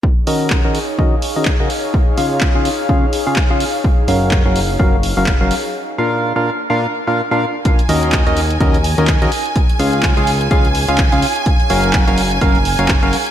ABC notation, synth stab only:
X:1
M:4/4
L:1/16
Q:"Swing 16ths" 1/4=126
K:Ebm
V:1 name="Synth stab"
z2 [E,DGBe]3 [E,DGBe] z2 [E,DGBe] z2 [E,DGBe] z [D,DGBe] z2 | z2 [D,DFAf]3 [D,DFAf] z2 [D,DFAf] z2 [D,DFAf] z [D,DFAf] z2 | z2 [G,DGBf]3 [G,DGBf] z2 [G,DGBf] z2 [G,DGBf] z [G,DGBf] z2 | z2 [B,,=DFBf]3 [B,,DFBf] z2 [B,,DFBf] z2 [B,,DFBf] z [B,,DFBf] z2 |
z2 [E,DGBe]3 [E,DGBe] z2 [E,DGBe] z2 [E,DGBe] z [D,DGBe] z2 | z2 [D,DFAf]3 [D,DFAf] z2 [D,DFAf] z2 [D,DFAf] z [D,DFAf] z2 | z2 [G,DGBf]3 [G,DGBf] z2 [G,DGBf] z2 [G,DGBf] z [G,DGBf] z2 |]